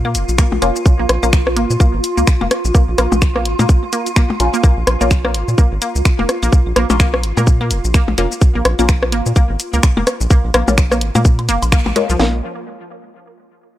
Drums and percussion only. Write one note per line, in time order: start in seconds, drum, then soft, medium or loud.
0.05 claves medium
0.15 closed hi-hat medium
0.15 shaker medium
0.29 shaker soft
0.38 finger snap medium
0.38 kick loud
0.38 shaker medium
0.52 percussion blips loud
0.62 closed hi-hat medium
0.62 claves medium
0.62 shaker soft
0.76 shaker soft
0.86 kick loud
0.86 shaker medium
1.09 cross-stick medium
1.09 closed hi-hat loud
1.09 low woodblock medium
1.23 claves medium
1.23 shaker soft
1.33 finger snap loud
1.33 kick loud
1.33 shaker medium
1.47 cross-stick medium
1.57 closed hi-hat medium
1.70 shaker soft
1.80 kick loud
1.80 claves medium
1.80 shaker medium
2.04 closed hi-hat loud
2.04 shaker soft
2.18 shaker soft
2.27 finger snap loud
2.27 kick loud
2.27 low woodblock medium
2.27 shaker medium
2.41 percussion blips loud
2.41 claves medium
2.51 cross-stick medium
2.51 closed hi-hat medium
2.51 shaker soft
2.65 shaker soft
2.75 kick loud
2.75 shaker medium
2.98 cross-stick medium
2.98 closed hi-hat loud
2.98 claves medium
2.98 low woodblock medium
2.98 shaker soft
3.12 percussion blips loud
3.12 shaker soft
3.22 finger snap loud
3.22 kick loud
3.22 shaker medium
3.36 cross-stick medium
3.45 closed hi-hat medium
3.59 percussion blips medium
3.59 claves medium
3.59 shaker soft
3.69 kick loud
3.69 shaker medium
3.93 closed hi-hat loud
3.93 shaker soft
4.06 closed hi-hat soft
4.06 shaker soft
4.16 finger snap loud
4.16 kick loud
4.16 claves medium
4.16 shaker medium
4.30 percussion blips medium
4.40 closed hi-hat loud
4.40 shaker soft
4.54 shaker soft
4.64 kick loud
4.64 claves medium
4.64 shaker medium
4.87 cross-stick medium
4.87 closed hi-hat medium
4.87 low woodblock medium
5.01 shaker soft
5.11 finger snap medium
5.11 kick loud
5.11 shaker soft
5.25 cross-stick medium
5.25 claves medium
5.34 closed hi-hat medium
5.48 shaker soft
5.58 kick loud
5.58 shaker medium
5.82 closed hi-hat loud
5.82 claves medium
5.82 shaker soft
5.96 shaker soft
6.05 finger snap medium
6.05 kick loud
6.05 low woodblock medium
6.05 shaker medium
6.19 percussion blips medium
6.29 cross-stick medium
6.29 closed hi-hat medium
6.29 shaker soft
6.43 claves medium
6.43 shaker soft
6.53 kick loud
6.53 shaker medium
6.76 cross-stick medium
6.76 closed hi-hat medium
6.76 low woodblock medium
6.90 percussion blips loud
6.90 shaker soft
7.00 finger snap medium
7.00 kick loud
7.00 claves medium
7.00 shaker medium
7.14 cross-stick medium
7.23 closed hi-hat medium
7.37 percussion blips medium
7.37 shaker soft
7.47 kick loud
7.47 shaker medium
7.61 claves medium
7.71 closed hi-hat medium
7.71 shaker soft
7.84 shaker soft
7.94 finger snap medium
7.94 kick loud
7.94 shaker medium
8.08 percussion blips medium
8.18 closed hi-hat medium
8.18 claves medium
8.18 shaker soft
8.32 shaker soft
8.41 kick loud
8.41 shaker medium
8.65 cross-stick medium
8.65 closed hi-hat medium
8.65 low woodblock medium
8.79 claves medium
8.79 shaker soft
8.89 finger snap medium
8.89 kick loud
8.89 shaker medium
9.03 cross-stick medium
9.12 closed hi-hat medium
9.26 shaker soft
9.36 kick loud
9.36 claves medium
9.36 shaker medium
9.60 closed hi-hat medium
9.60 shaker medium
9.73 shaker soft
9.83 finger snap loud
9.83 kick loud
9.83 low woodblock medium
9.83 shaker medium
9.97 percussion blips medium
9.97 claves medium
10.07 cross-stick medium
10.07 closed hi-hat medium
10.07 shaker soft
10.21 shaker soft
10.30 kick loud
10.30 shaker medium
10.54 cross-stick medium
10.54 closed hi-hat medium
10.54 claves medium
10.54 low woodblock medium
10.54 shaker soft
10.68 percussion blips loud
10.68 shaker soft
10.78 finger snap medium
10.78 kick loud
10.78 shaker medium
10.92 cross-stick medium
10.92 shaker soft
11.01 closed hi-hat medium
11.15 percussion blips loud
11.15 claves medium
11.15 shaker soft
11.25 kick loud
11.25 shaker medium
11.39 closed hi-hat soft
11.39 low woodblock soft
11.49 closed hi-hat medium
11.49 shaker medium
11.62 closed hi-hat soft
11.62 low woodblock medium
11.62 shaker soft
11.72 finger snap medium
11.72 kick loud
11.72 claves medium
11.72 shaker medium
11.86 percussion blips loud
11.96 closed hi-hat loud
11.96 shaker soft
12.10 shaker soft
12.19 snare loud